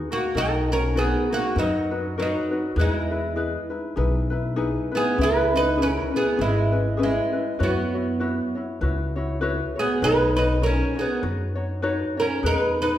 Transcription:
0.11 oud A#3 F#4, ukulele D#4 F#4
0.35 upright bass B1, ukulele D#4 F#4 A#4, oud D#4 A#4
0.71 oud C#4 A#4, ukulele D#4 F#4
0.95 oud B3 G#4, ukulele D#4 F#4 A#4 B4
1.30 oud A#3 F#4, ukulele D#4 F#4
1.55 upright bass F#2, oud F#3, ukulele D#4 F#4 A#4 B4
1.59 oud D#4
1.91 ukulele D#4 F#4 B4
2.18 oud F#3, ukulele D#4 F#4 A#4 B4
2.22 oud D#4
2.51 ukulele D#4 F#4 B4
2.76 upright bass E2, oud G#3, ukulele E4 G#4 B4
2.81 oud E4
3.11 ukulele E4 B4
3.36 ukulele E4 G#4 B4
3.70 ukulele D#4 E4 B4
3.96 upright bass B1, ukulele D#4 E4 G#4 B4
4.30 ukulele D#4 E4 B4
4.56 ukulele D#4 E4 G#4 B4
4.92 oud B3, ukulele D#4 E4 B4
4.97 oud G#4
5.18 upright bass C#2, ukulele C#4 E4 G#4 B4, oud E4
5.23 oud B4
5.52 ukulele C#4 B4, oud D#4
5.57 oud B4
5.77 ukulele C#4 E4 G#4
5.82 oud C#4 A#4
6.12 ukulele C#4 E4 B4
6.16 oud B3 G#4
6.37 upright bass G#1, ukulele C#4 E4 G#4 B4
6.41 oud G#3 E4
6.72 ukulele C#4 E4 B4
6.97 ukulele C#4 E4 G#4 B4
7.03 oud G#3 E4
7.33 ukulele C#4 E4 B4
7.59 upright bass F#2, ukulele E4 F#4 B4 C#5
7.63 oud B3 F#4
7.94 ukulele E4 F#4 C#5
8.20 ukulele E4 F#4 B4 C#5
8.55 ukulele E4 F#4 C#5
8.81 upright bass C#2, ukulele E4 F#4 B4 C#5
9.16 ukulele E4 F#4 C#5
9.41 ukulele E4 F#4 B4 C#5
9.76 ukulele E4 F#4 C#5, oud G#4
9.80 oud B3
10.02 upright bass B1, ukulele D#4 F#4 B4 C#5, oud D#4 B4
10.36 ukulele D#4 F#4 C#5, oud D#4 B4
10.62 ukulele D#4 F#4 C#5, oud A#4
10.66 oud C#4
10.95 ukulele D#4 F#4 C#5, oud G#4
11.01 oud B3
11.21 upright bass F#2, ukulele D#4 F#4 B4 C#5
11.55 ukulele D#4 F#4 C#5
11.82 ukulele D#4 F#4 B4 C#5
12.17 ukulele D#4 F#4 C#5, oud A#4
12.21 oud C#4
12.43 upright bass E2, ukulele D#4 G#4 B4, oud B4
12.47 oud D#4
12.78 ukulele D#4 B4
12.82 oud D#4 B4

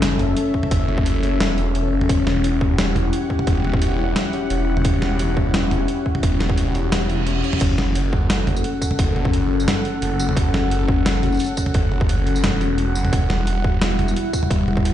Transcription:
Already playing: detuned saw bass F#1, analog synth pad C#4 A4 E5, synth texture C#4 C#5
0.02 snare, closed hi-hat
0.19 closed hi-hat, mid tom
0.37 closed hi-hat
0.54 kick
0.63 mid tom
0.71 detuned saw bass F#1, kick, closed hi-hat
0.89 mid tom
0.98 kick
1.06 closed hi-hat
1.23 closed hi-hat
1.40 detuned saw bass E1, snare, closed hi-hat
1.58 closed hi-hat
1.75 closed hi-hat
1.93 detuned saw bass F#1
2.01 mid tom
2.09 detuned saw bass E1, analog synth pad E4 G4 F#5, kick, closed hi-hat
2.27 snare, mid tom
2.44 closed hi-hat
2.61 kick
2.78 snare, closed hi-hat
2.96 closed hi-hat, mid tom
3.13 closed hi-hat
3.30 kick
3.39 mid tom
3.47 detuned saw bass E1, kick, closed hi-hat
3.64 mid tom
3.73 kick
3.82 closed hi-hat
4.16 snare, closed hi-hat
4.33 closed hi-hat
4.50 detuned saw bass E1, closed hi-hat
4.77 mid tom
4.85 detuned saw bass E1, kick, closed hi-hat
5.02 snare, mid tom
5.19 closed hi-hat
5.37 kick
5.54 snare, closed hi-hat
5.71 closed hi-hat, mid tom
5.88 closed hi-hat
6.06 kick
6.15 mid tom
6.23 detuned saw bass E1, kick, closed hi-hat
6.40 snare, closed hi-hat, mid tom
6.50 kick
6.58 closed hi-hat
6.75 closed hi-hat
6.92 detuned saw bass E1, snare, closed hi-hat, reverse cymbal
7.10 closed hi-hat
7.27 closed hi-hat
7.44 closed hi-hat
7.53 mid tom
7.61 detuned saw bass F#1, analog synth pad C#4 A4 F#5, synth texture F#4 F#5, kick, closed hi-hat, crash
7.78 snare, mid tom
7.95 closed hi-hat
8.13 kick
8.30 snare, closed hi-hat
8.47 closed hi-hat, mid tom
8.56 tambourine
8.64 closed hi-hat
8.82 kick, tambourine
8.91 mid tom
8.99 detuned saw bass F#1, kick, closed hi-hat
9.16 mid tom
9.25 kick
9.33 closed hi-hat
9.60 tambourine
9.68 snare, closed hi-hat
9.85 closed hi-hat
10.02 detuned saw bass F#1, closed hi-hat
10.20 tambourine
10.29 mid tom
10.37 detuned saw bass F#1, kick, closed hi-hat
10.54 snare, mid tom
10.71 closed hi-hat
10.88 kick
11.06 snare, closed hi-hat
11.23 closed hi-hat, mid tom
11.32 tambourine
11.34 tambourine
11.37 tambourine
11.39 closed hi-hat, tambourine
11.41 tambourine
11.44 tambourine
11.46 tambourine
11.57 kick, tambourine
11.66 mid tom
11.74 detuned saw bass F#1, kick, closed hi-hat
11.92 mid tom
12.01 kick
12.09 closed hi-hat
12.27 closed hi-hat
12.36 tambourine
12.44 detuned saw bass E1, snare, closed hi-hat
12.61 closed hi-hat
12.78 closed hi-hat
12.95 detuned saw bass F#1, tambourine
13.05 mid tom
13.13 detuned saw bass E1, analog synth pad G3 E4, kick, closed hi-hat
13.30 snare, mid tom
13.47 closed hi-hat
13.64 kick
13.82 snare, closed hi-hat
13.99 closed hi-hat, mid tom
14.08 tambourine
14.16 closed hi-hat
14.33 kick, tambourine
14.43 mid tom
14.51 detuned saw bass E1, kick, closed hi-hat
14.68 mid tom
14.77 kick
14.85 closed hi-hat

